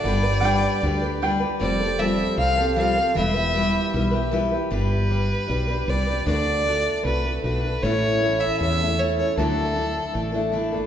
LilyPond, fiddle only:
\new Staff \with { instrumentName = "Fiddle" } { \time 4/4 \key g \major \tempo 4 = 154 d''2.~ d''8 r8 | d''4 e''4 f''4 f''4 | e''2. r4 | b'2. d''4 |
d''2 b'4 b'4 | cis''4. e''8 e''4 cis''8 cis''8 | a'2.~ a'8 r8 | }